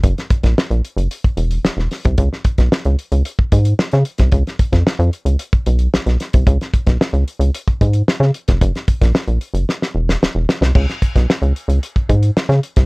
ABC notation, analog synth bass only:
X:1
M:4/4
L:1/16
Q:1/4=112
K:Gb
V:1 name="Analog synth bass" clef=bass
G,,, z2 B,,, z B,,, z G,,, z2 _F,,,2 F,,, F,,, z =C,, | D,, z2 C,, z D,, z D,, z2 A,,2 z D, z =C,, | D,, z2 F,, z F,, z D,, z2 C,,2 C,, C,, z =C,, | D,, z2 C,, z D,, z D,, z2 A,,2 z D, z F,,, |
G,,, z2 B,,, z B,,, z G,,, z2 _F,,,2 F,,, F,,, z =C,, | D,, z2 C,, z D,, z D,, z2 A,,2 z D, z =C,, |]